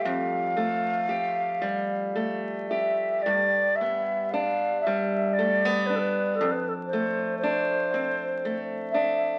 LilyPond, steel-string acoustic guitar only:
\new Staff \with { instrumentName = "Steel-string acoustic guitar" } { \time 3/4 \key f \lydian \tempo 4 = 58 f,8 a8 g'8 g8 a8 g'8 | g,8 b8 d'8 g8 a16 b16 d'8 | f,8 a8 d'8 c'8 a8 d'8 | }